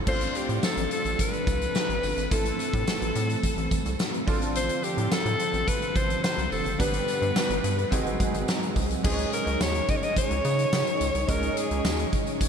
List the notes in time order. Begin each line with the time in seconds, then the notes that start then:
0.05 A1 F3 A3 C4 D4 F4 C5, kick, crash, tambourine
0.21 closed hi-hat, tambourine
0.35 G4, closed hi-hat, tambourine
0.49 A2, closed hi-hat
0.63 A4, snare, tambourine
0.77 A1, closed hi-hat
0.91 A4, closed hi-hat, tambourine
1.05 A1, closed hi-hat, tambourine
1.19 B4, kick, closed hi-hat, tambourine
1.33 closed hi-hat
1.47 C2, kick, closed hi-hat, tambourine
1.61 closed hi-hat, tambourine
1.75 snare, tambourine
1.89 A1, closed hi-hat
2.03 G1, open hi-hat, tambourine
2.17 G#1, closed hi-hat, tambourine
2.30 A1 E3 A3 C4 E4 A4, kick, closed hi-hat, tambourine
2.45 closed hi-hat, tambourine
2.59 closed hi-hat, tambourine
2.73 A2, kick, closed hi-hat
2.87 snare, tambourine
3.02 A1, closed hi-hat
3.15 A2, closed hi-hat, tambourine
3.29 closed hi-hat, tambourine
3.43 kick, closed hi-hat, tambourine
3.57 A1, closed hi-hat
3.71 kick, closed hi-hat, tambourine
3.86 C2, closed hi-hat, tambourine
3.99 snare, tambourine
4.14 closed hi-hat
4.27 A1 D3 F3 C4 D4 F4 A4, kick, open hi-hat, tambourine
4.41 closed hi-hat, tambourine
4.55 C5, closed hi-hat, tambourine
4.69 closed hi-hat, tambourine
4.83 G4, closed hi-hat, tambourine
4.97 A2, closed hi-hat
5.12 A4, snare, tambourine
5.25 A2, closed hi-hat
5.39 closed hi-hat, tambourine
5.53 A1, closed hi-hat, tambourine
5.68 B4, kick, closed hi-hat, tambourine
5.82 closed hi-hat
5.96 A1 C5, kick, closed hi-hat, tambourine
6.10 closed hi-hat, tambourine
6.24 C5, snare, tambourine
6.38 C2, closed hi-hat
6.52 F1 A4, open hi-hat, tambourine
6.66 F#1, closed hi-hat
6.78 G1 G3 B3 D4 G4 B4, kick, closed hi-hat, tambourine
6.93 closed hi-hat, tambourine
7.08 closed hi-hat, tambourine
7.22 G2, closed hi-hat
7.36 snare, tambourine
7.50 G1, closed hi-hat
7.64 G2, closed hi-hat, tambourine
7.78 closed hi-hat
7.91 G#1 F#3 G#3 C4 D#4 F#4 G#4, kick, closed hi-hat, tambourine
8.06 G1, closed hi-hat
8.20 kick, closed hi-hat, tambourine
8.34 G#1, closed hi-hat, tambourine
8.48 snare, tambourine
8.63 closed hi-hat
8.76 C2, kick, open hi-hat, tambourine
8.90 closed hi-hat, tambourine
9.03 C#2 C#3 G#3 C#4 D#4 G#4 C5, kick, crash, tambourine
9.12 C#5
9.18 closed hi-hat
9.32 A#4, closed hi-hat, tambourine
9.47 C#2, closed hi-hat
9.61 D#2 C#5, snare, tambourine
9.75 closed hi-hat
9.88 D#5, kick, closed hi-hat, tambourine
9.96 C#5
10.03 D#5, closed hi-hat, tambourine
10.17 C#5, kick, closed hi-hat, tambourine
10.31 C#2, closed hi-hat
10.44 C#3, closed hi-hat, tambourine
10.59 closed hi-hat, tambourine
10.73 C#3, snare, tambourine
10.87 closed hi-hat
11.01 C#2, closed hi-hat, tambourine
11.15 C2, closed hi-hat, tambourine
11.27 C#2 G#3 C#4 D#4 G#4 A#4 C#5, kick, closed hi-hat, tambourine
11.43 closed hi-hat
11.57 G#4, closed hi-hat, tambourine
11.71 C#2, closed hi-hat
11.85 D#2, snare, tambourine
11.99 closed hi-hat
12.13 kick, closed hi-hat, tambourine
12.27 closed hi-hat, tambourine
12.41 kick, closed hi-hat, tambourine